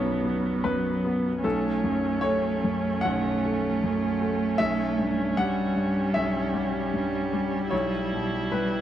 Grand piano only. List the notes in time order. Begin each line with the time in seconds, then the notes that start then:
Already playing: B1 F#2 B3 C#5 D5
0.24 B3
0.64 F#2 B4
1.05 B3
1.44 B1 A4
1.84 F#2
2.21 A3 C#5
2.64 F#2
3.01 F#5
3.05 B1
3.45 A3
3.84 F#2
4.21 A3
4.58 B1 E5
4.99 G2
5.37 G3 F#5
5.76 G2
6.14 B1 E5
6.54 G3
6.94 G2
7.33 G3
7.71 B1 C#5
8.13 B2
8.52 G3 B4